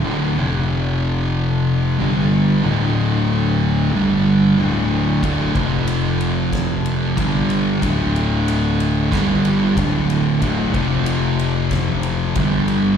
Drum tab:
RD |--------|--------|xxxxxxxx|xxxxxxxx|
SD |--------|--------|----o---|----o---|
BD |--------|--------|oo--o-o-|o---o-o-|

RD |xxxxxxxx|
SD |----o---|
BD |oo--o-o-|